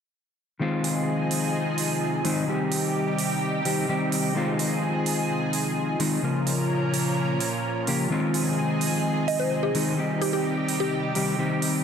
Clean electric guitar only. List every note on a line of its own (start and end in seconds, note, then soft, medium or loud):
0.59 2.21 D#3 medium
0.59 2.22 G#3 medium
0.59 2.22 C4 medium
0.59 2.23 F4 loud
2.24 2.45 D#3 medium
2.24 2.45 G#3 medium
2.24 2.45 C4 medium
2.24 2.46 D#4 loud
2.47 3.62 D#3 medium
2.47 3.62 G3 medium
2.47 3.63 C4 medium
2.47 3.63 G4 medium
3.65 3.86 D#3 medium
3.65 3.86 G3 medium
3.65 3.86 C4 medium
3.65 3.86 G4 medium
3.88 4.33 D#3 medium
3.88 4.33 G3 medium
3.88 4.33 C4 medium
3.88 4.33 G4 medium
4.35 5.96 D#3 medium
4.35 5.97 G#3 medium
4.35 5.97 C4 medium
4.35 5.98 F4 loud
5.99 6.20 D#3 medium
5.99 6.20 G#3 medium
5.99 6.21 C4 medium
5.99 6.21 D#4 loud
6.22 7.37 C#3 medium
6.22 7.37 F3 medium
6.22 7.38 A#3 medium
6.22 7.38 F4 medium
7.87 8.08 C#3 medium
7.87 8.08 F3 medium
7.87 8.08 A#3 medium
7.87 8.08 G4 medium
8.10 9.71 D#3 medium
8.10 9.72 G#3 medium
8.10 9.72 C4 medium
8.10 9.73 F4 loud
9.74 9.95 D#3 medium
9.74 9.95 G#3 medium
9.74 9.96 C4 medium
9.74 9.96 D#4 loud
9.97 11.12 D#3 medium
9.97 11.12 G3 medium
9.97 11.13 C4 medium
9.97 11.13 G4 medium
11.15 11.36 D#3 medium
11.15 11.36 G3 medium
11.15 11.36 C4 medium
11.15 11.36 G4 medium
11.38 11.83 D#3 medium
11.38 11.83 G3 medium
11.38 11.83 C4 medium
11.38 11.83 G4 medium